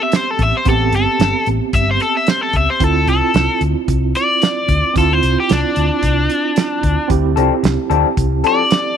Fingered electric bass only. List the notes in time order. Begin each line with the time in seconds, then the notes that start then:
0.39 A1
0.66 A1
0.93 G1
1.07 muted fingered electric bass stroke
1.19 G1
1.47 A1
1.73 G1
2.53 C#2
2.80 D2
3.07 C2
3.22 muted fingered electric bass stroke
3.34 C2
3.61 D2
3.88 C2
4.68 D2
4.95 D2
5.23 C2
5.50 C2
5.77 D2
6.02 C2
6.83 D2
7.10 D2
7.37 C2
7.51 muted fingered electric bass stroke
7.63 C2
7.90 D2
8.17 C2